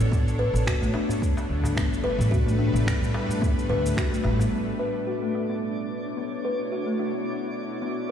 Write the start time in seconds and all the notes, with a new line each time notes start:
Already playing: B2 B3 D4 A4 C#5
0.00 A1, shaker
0.11 A2 B3, kick, shaker
0.27 A3, shaker
0.39 B4
0.53 A1 B4, shaker
0.66 G3 F#4, finger snap, kick, shaker
0.81 A1 A3, shaker
0.94 D4, darbuka tek
1.09 B3, darbuka dum, shaker
1.22 kick, shaker
1.37 darbuka tek, shaker
1.49 D2
1.63 darbuka tek, darbuka dum, shaker
1.77 G1 B3, finger snap, kick, shaker
1.94 shaker
2.03 B4, darbuka ka
2.18 A1, darbuka tek, shaker
2.31 F#4, kick, shaker
2.46 A3, darbuka ka, shaker
2.59 D4
2.74 A1 B3, shaker
2.87 finger snap, kick, shaker
3.01 A1, shaker
3.14 darbuka tek
3.29 darbuka dum, shaker
3.41 B3, kick, shaker
3.59 shaker
3.69 D2 B4, darbuka ka, darbuka dum
3.86 shaker
3.97 F#4, finger snap, kick, shaker
4.12 A3, darbuka ka, shaker
4.24 A1 D4, darbuka ka, darbuka tek
4.39 B3, darbuka tek, darbuka dum, shaker
4.52 B2 B3 D4
4.79 B4
5.05 E4 F#4
5.10 C#5
5.22 A3
5.35 D4
5.49 B3
5.64 F#4
6.17 B3
6.45 B4
6.72 F#4
6.86 A3
6.99 D4
7.14 B3
7.82 B3